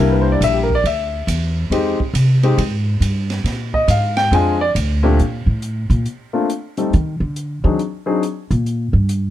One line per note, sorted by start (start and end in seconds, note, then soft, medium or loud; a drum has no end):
0.00 0.40 C2 medium
0.00 0.64 G3 medium
0.00 0.64 A#3 medium
0.00 0.64 D4 medium
0.00 0.64 E4 medium
0.00 0.13 A#4 medium
0.12 0.26 B4 medium
0.21 0.31 C5 medium
0.32 0.40 D5 medium
0.41 0.83 A#1 medium
0.41 0.56 E5 loud
0.41 hi-hat pedal medium
0.41 ride medium
0.54 0.68 G4 medium
0.63 0.74 A#4 medium
0.70 kick medium
0.75 0.84 D5 medium
0.84 1.26 D2 medium
0.84 1.68 E5 medium
0.84 ride medium
1.27 1.70 E2 medium
1.27 hi-hat pedal medium
1.27 ride medium
1.70 1.97 F2 medium
1.70 1.97 G#3 medium
1.70 1.97 C4 medium
1.70 1.97 D#4 medium
1.70 1.97 G4 medium
1.70 ride medium
1.99 muted upright bass stroke soft
1.99 kick medium
2.14 2.56 C3 medium
2.14 hi-hat pedal medium
2.14 ride medium
2.43 2.57 G#3 medium
2.43 2.57 C4 medium
2.43 2.57 D#4 medium
2.43 2.57 G4 medium
2.43 ride soft
2.58 3.00 G#2 medium
2.58 ride medium
3.01 3.43 G2 medium
3.01 hi-hat pedal medium
3.01 ride medium
3.30 snare soft
3.30 ride soft
3.44 3.87 A#2 medium
3.44 snare soft
3.44 ride medium
3.74 3.88 D#5 medium
3.74 kick medium
3.88 4.30 G#2 medium
3.88 4.17 F5 medium
3.88 hi-hat pedal medium
3.88 ride medium
4.17 4.31 G5 loud
4.17 snare soft
4.17 ride soft
4.31 4.74 F2 medium
4.31 4.57 G#3 medium
4.31 4.57 C4 medium
4.31 4.58 D4 medium
4.31 4.58 F4 medium
4.31 4.60 G#5 medium
4.31 ride medium
4.61 4.70 D5 loud
4.75 5.17 D2 medium
4.75 hi-hat pedal medium
4.75 ride medium
5.03 5.17 A#2 medium
5.03 5.17 A3 medium
5.03 5.17 C4 medium
5.03 5.17 D4 medium
5.03 5.18 G4 medium
5.19 5.46 A#2 medium
5.19 closed hi-hat soft
5.46 5.87 A2 medium
5.62 closed hi-hat soft
5.90 6.05 A#2 medium
5.90 closed hi-hat soft
6.06 closed hi-hat soft
6.33 6.47 A3 medium
6.33 6.47 A#3 medium
6.33 6.47 C4 medium
6.33 6.48 D4 medium
6.33 6.47 F4 medium
6.50 closed hi-hat soft
6.77 6.91 G3 medium
6.77 6.91 A3 soft
6.77 6.91 C4 soft
6.77 6.91 D#4 soft
6.77 6.91 A4 medium
6.77 closed hi-hat soft
6.93 7.20 D#3 medium
6.93 closed hi-hat soft
7.20 7.61 D3 medium
7.36 closed hi-hat soft
7.64 7.73 D#3 medium
7.64 7.78 F#3 medium
7.64 7.78 C4 soft
7.64 7.78 D4 medium
7.64 7.78 D#4 soft
7.64 7.78 G#4 medium
7.79 closed hi-hat soft
8.06 8.20 F#3 medium
8.06 8.21 C4 medium
8.06 8.21 D4 medium
8.06 8.21 D#4 medium
8.06 8.21 G#4 medium
8.23 closed hi-hat soft
8.51 8.91 A#2 medium
8.51 closed hi-hat soft
8.66 closed hi-hat soft
8.93 9.30 G2 medium
9.09 closed hi-hat soft